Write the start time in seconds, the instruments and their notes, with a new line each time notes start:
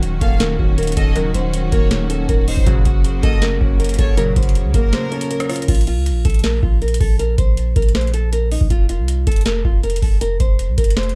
Already playing: 808-style bass D#1, grand piano D#3 F#3, string section D#3 C#4 F#4, nylon-string guitar F#4
0.02 grand piano D#3, closed hi-hat
0.21 808-style bass D#1, grand piano A#3, nylon-string guitar A4, violin section F5, kick, closed hi-hat
0.40 grand piano D#3, nylon-string guitar A#4, snare, closed hi-hat
0.59 808-style bass D#1, grand piano C#4, nylon-string guitar F#4, kick
0.78 nylon-string guitar A#4, closed hi-hat
0.83 closed hi-hat
0.87 closed hi-hat
0.92 closed hi-hat
0.97 808-style bass D#1, nylon-string guitar A4, violin section D#5, kick, closed hi-hat
1.16 analog polysynth C#3 D#3 F#3, grand piano D#3, nylon-string guitar A#4, closed hi-hat
1.34 808-style bass D#1, grand piano F#3, nylon-string guitar C5, closed hi-hat
1.54 grand piano D#3, closed hi-hat
1.72 808-style bass D#1, grand piano A#3, nylon-string guitar A#4, violin section C#5, kick, closed hi-hat
1.91 grand piano D#3, nylon-string guitar C#5, snare, closed hi-hat
2.10 grand piano C#4, nylon-string guitar A4, closed hi-hat
2.29 808-style bass D#1, nylon-string guitar A#4, kick, closed hi-hat
2.48 nylon-string guitar D#4, violin section C5, open hi-hat
2.57 808-style bass D#1, kick
2.66 808-style bass F#1, analog polysynth A#2 C#3 F#3, grand piano C#3, string section C#3 A#3, nylon-string guitar F#4, kick, closed hi-hat
2.85 808-style bass F#1, grand piano F#3, nylon-string guitar F#4, kick, closed hi-hat
3.04 grand piano C#3, closed hi-hat
3.23 808-style bass F#1, grand piano A#3, nylon-string guitar A4, violin section D#5, kick, closed hi-hat
3.42 grand piano C#3, nylon-string guitar A#4, snare, closed hi-hat
3.61 808-style bass F#1, grand piano C#4, nylon-string guitar F#4, kick
3.80 nylon-string guitar A#4, closed hi-hat
3.84 closed hi-hat
3.89 closed hi-hat
3.94 closed hi-hat
3.99 808-style bass F#1, nylon-string guitar A4, violin section C#5, kick, closed hi-hat
4.17 analog polysynth A#2 C#3 F#3, grand piano C#3, nylon-string guitar A#4, closed hi-hat
4.36 808-style bass F#1, grand piano F#3, nylon-string guitar C5, kick, closed hi-hat
4.43 closed hi-hat
4.49 closed hi-hat
4.55 grand piano C#3, closed hi-hat
4.65 808-style bass C#2
4.74 808-style bass F#1, grand piano A#3, violin section A#4, nylon-string guitar A#4, kick, closed hi-hat
4.93 grand piano C#3, nylon-string guitar C5, snare, closed hi-hat
5.12 grand piano C#4, nylon-string guitar A4, closed hi-hat
5.21 closed hi-hat
5.31 nylon-string guitar A#4, closed hi-hat
5.40 cross-stick, closed hi-hat
5.49 nylon-string guitar F4, cross-stick, closed hi-hat, open hi-hat
5.56 closed hi-hat
5.62 closed hi-hat
5.68 808-style bass A#1, nylon-string guitar F4, kick, closed hi-hat, crash
5.75 closed hi-hat
5.81 closed hi-hat
5.87 nylon-string guitar F4, closed hi-hat
5.97 808-style bass C#2
6.06 closed hi-hat
6.11 808-style bass A#1
6.25 808-style bass A#1, nylon-string guitar A4, kick, closed hi-hat
6.30 closed hi-hat
6.34 closed hi-hat
6.39 closed hi-hat
6.44 nylon-string guitar A#4, snare, closed hi-hat
6.63 808-style bass A#1, nylon-string guitar F4, kick
6.82 nylon-string guitar A#4, closed hi-hat
6.88 closed hi-hat
6.94 closed hi-hat
7.00 808-style bass A#1, nylon-string guitar A4, kick, open hi-hat
7.19 nylon-string guitar A#4, closed hi-hat
7.38 808-style bass A#1, nylon-string guitar C5, kick, closed hi-hat
7.57 closed hi-hat
7.76 808-style bass A#1, nylon-string guitar A#4, kick, closed hi-hat
7.82 closed hi-hat
7.89 closed hi-hat
7.95 nylon-string guitar C5, snare, closed hi-hat
8.01 closed hi-hat
8.07 closed hi-hat
8.14 nylon-string guitar A4, closed hi-hat
8.33 nylon-string guitar A#4, closed hi-hat
8.52 nylon-string guitar D#4, open hi-hat
8.61 808-style bass A#1, kick
8.70 808-style bass F1, nylon-string guitar F4, kick, closed hi-hat
8.89 nylon-string guitar F4, closed hi-hat
8.99 808-style bass C2
9.08 closed hi-hat
9.27 808-style bass F1, nylon-string guitar A4, kick, closed hi-hat
9.32 closed hi-hat
9.36 closed hi-hat
9.41 closed hi-hat
9.46 nylon-string guitar A#4, snare, closed hi-hat
9.65 808-style bass F1, nylon-string guitar F4, kick
9.83 nylon-string guitar A#4, closed hi-hat
9.90 closed hi-hat
9.96 closed hi-hat
10.02 808-style bass F1, nylon-string guitar A4, kick, open hi-hat
10.21 nylon-string guitar A#4, closed hi-hat
10.40 808-style bass F1, nylon-string guitar C5, kick, closed hi-hat
10.59 closed hi-hat
10.68 808-style bass C2
10.78 808-style bass F1, nylon-string guitar A#4, kick, closed hi-hat
10.84 closed hi-hat
10.90 closed hi-hat
10.97 nylon-string guitar C5, snare, closed hi-hat
11.03 closed hi-hat
11.09 closed hi-hat